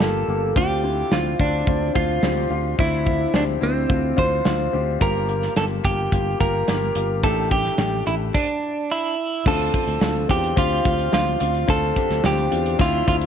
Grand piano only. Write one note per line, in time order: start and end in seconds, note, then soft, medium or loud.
0.00 0.58 G2 medium
0.00 0.29 A#3 medium
0.00 0.29 F4 medium
0.00 0.29 G4 medium
0.00 0.58 A#4 medium
0.29 0.53 A#3 medium
0.29 0.53 F4 soft
0.29 0.53 G4 medium
0.56 1.36 D3 medium
0.56 0.80 C4 medium
0.56 0.80 D4 medium
0.56 0.80 F4 medium
0.84 1.08 C4 medium
0.84 1.08 D4 medium
0.84 1.08 E4 medium
1.11 1.36 C4 medium
1.11 1.36 D4 medium
1.11 1.36 F4 medium
1.39 1.64 C4 medium
1.39 1.64 D4 medium
1.39 1.64 F4 medium
1.67 1.91 C4 medium
1.67 1.91 D4 medium
1.67 1.91 F4 medium
1.94 2.19 C4 medium
1.94 2.19 D4 medium
1.94 2.19 F4 medium
2.23 2.47 C4 medium
2.23 2.47 D4 medium
2.23 2.47 G4 medium
2.50 2.75 C4 medium
2.50 2.75 D4 medium
2.50 2.75 F4 medium
2.78 3.58 D3 medium
2.78 3.03 C4 medium
2.78 3.03 D4 medium
2.78 3.03 E4 medium
3.06 3.30 C4 medium
3.06 3.30 D4 medium
3.06 3.30 F4 medium
3.34 3.58 C4 medium
3.34 3.58 D4 medium
3.34 3.58 G4 medium
3.61 3.85 C4 medium
3.61 3.86 D4 medium
3.61 3.86 E4 medium
3.89 4.13 C4 medium
3.89 4.14 D4 medium
3.89 4.14 F4 medium
4.16 4.41 C4 medium
4.16 4.41 D4 medium
4.16 4.41 F4 medium
4.44 4.69 C4 medium
4.44 4.69 D4 medium
4.44 4.69 F4 medium
4.73 4.97 C4 medium
4.73 4.97 D4 medium
4.73 4.97 G4 medium
5.01 5.80 G2 medium
5.01 5.25 A#3 medium
5.01 5.25 F4 medium
5.01 5.25 G4 medium
5.29 5.53 A#3 medium
5.29 5.53 F4 medium
5.29 5.53 G4 medium
5.57 5.81 A#3 medium
5.57 5.81 F4 medium
5.57 5.81 G4 medium
5.84 6.08 A#3 medium
5.84 6.09 F4 medium
5.84 6.09 G4 medium
6.13 6.37 A#3 medium
6.13 6.37 F4 medium
6.13 6.37 G4 medium
6.40 6.64 A#3 medium
6.40 6.64 F4 medium
6.40 6.64 G4 medium
6.68 6.92 A#3 medium
6.68 6.92 F4 medium
6.68 6.92 G4 medium
6.96 7.20 A#3 medium
6.96 7.20 F4 medium
6.96 7.20 G4 medium
7.23 8.03 A2 medium
7.23 7.48 A3 medium
7.23 7.48 D4 medium
7.23 7.48 G4 medium
7.52 7.76 A3 medium
7.52 7.76 D4 medium
7.52 7.76 G4 medium
7.79 8.03 A3 medium
7.79 8.03 D4 medium
7.79 8.03 G4 medium
8.07 8.31 A3 medium
8.07 8.31 D4 medium
8.07 8.31 G4 medium
9.46 10.26 D3 medium
9.46 9.70 C4 medium
9.46 9.70 D4 medium
9.46 9.70 F4 medium
9.73 9.98 C4 medium
9.73 9.98 D4 medium
9.73 9.98 F4 medium
10.01 10.25 C4 medium
10.01 10.25 D4 medium
10.01 10.25 F4 medium
10.29 10.53 C4 medium
10.29 10.53 D4 medium
10.29 10.53 F4 medium
10.56 10.81 C4 medium
10.56 10.81 D4 medium
10.56 10.81 G4 medium
10.84 11.09 C4 medium
10.84 11.09 D4 medium
10.84 11.09 F4 medium
11.12 11.37 C4 medium
11.12 11.37 D4 medium
11.12 11.37 F4 medium
11.40 11.64 C4 medium
11.40 11.65 D4 medium
11.40 11.65 F4 medium
11.68 12.48 D3 medium
11.68 11.92 C4 medium
11.68 11.92 D4 medium
11.68 11.92 F4 medium
11.96 12.20 C4 medium
11.96 12.20 D4 medium
11.96 12.20 G4 medium
12.24 12.48 C4 medium
12.24 12.48 D4 medium
12.24 12.48 F4 medium
12.51 12.76 C4 medium
12.51 12.76 D4 medium
12.51 12.76 F4 medium
12.79 13.03 C4 medium
12.79 13.04 D4 medium
12.79 13.03 E4 loud
13.07 13.26 C4 medium
13.07 13.26 D4 medium
13.07 13.26 F4 medium